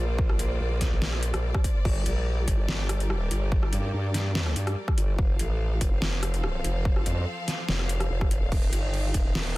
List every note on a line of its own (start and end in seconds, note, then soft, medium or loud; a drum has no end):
0.00 0.38 A#1 loud
0.00 1.82 A#3 medium
0.00 1.82 F4 medium
0.00 1.82 C5 medium
0.00 5.15 D5 medium
0.18 kick loud
0.29 cross-stick medium
0.39 0.59 A#1 loud
0.39 closed hi-hat medium
0.60 0.90 A#1 loud
0.81 kick medium
0.81 snare soft
0.81 closed hi-hat medium
0.92 1.32 A#1 loud
1.02 snare loud
1.13 cross-stick medium
1.23 closed hi-hat medium
1.34 1.53 A#1 loud
1.34 cross-stick medium
1.34 closed hi-hat soft
1.54 kick loud
1.54 cross-stick medium
1.64 kick medium
1.64 closed hi-hat medium
1.85 2.04 G1 loud
1.85 5.15 G3 medium
1.85 5.15 G4 medium
1.85 5.15 A#4 medium
1.85 kick loud
1.85 crash medium
2.06 2.46 A#1 loud
2.06 closed hi-hat medium
2.48 2.67 G1 loud
2.48 kick medium
2.48 closed hi-hat medium
2.68 3.29 G1 loud
2.68 snare loud
2.89 cross-stick medium
2.89 closed hi-hat medium
3.00 closed hi-hat soft
3.10 cross-stick medium
3.31 3.71 G1 loud
3.31 closed hi-hat medium
3.52 kick loud
3.63 cross-stick medium
3.73 3.92 G2 loud
3.73 closed hi-hat medium
3.93 4.54 G2 loud
4.14 snare soft
4.14 closed hi-hat medium
4.35 snare loud
4.46 cross-stick medium
4.56 4.75 G2 loud
4.56 closed hi-hat medium
4.67 cross-stick medium
4.67 closed hi-hat soft
4.88 kick loud
4.88 cross-stick medium
4.98 5.17 G1 loud
4.98 closed hi-hat medium
5.19 5.38 F1 loud
5.19 8.49 F3 medium
5.19 8.49 C4 medium
5.19 8.49 A4 medium
5.19 9.57 F5 medium
5.19 kick loud
5.39 5.79 A1 loud
5.39 closed hi-hat medium
5.81 6.00 F1 medium
5.81 kick medium
5.81 closed hi-hat medium
6.02 6.63 F1 loud
6.02 snare loud
6.23 cross-stick medium
6.23 closed hi-hat medium
6.34 closed hi-hat soft
6.44 cross-stick medium
6.64 7.05 F1 medium
6.64 closed hi-hat medium
6.85 kick loud
6.96 cross-stick medium
7.06 7.25 F2 loud
7.06 closed hi-hat medium
7.48 snare soft
7.48 closed hi-hat medium
7.68 8.09 F1 loud
7.68 snare loud
7.80 cross-stick medium
7.89 closed hi-hat medium
8.00 cross-stick medium
8.00 closed hi-hat soft
8.10 8.50 F1 loud
8.21 kick loud
8.21 cross-stick medium
8.31 closed hi-hat medium
8.52 8.71 D#1 loud
8.52 9.57 D#3 medium
8.52 9.57 D#4 medium
8.52 9.57 G4 medium
8.52 kick loud
8.52 crash medium
8.73 9.13 G1 loud
8.73 closed hi-hat medium
8.94 crash soft
9.14 9.34 D#1 medium
9.14 kick medium
9.14 closed hi-hat medium
9.35 9.57 D#1 loud
9.35 snare loud
9.35 crash medium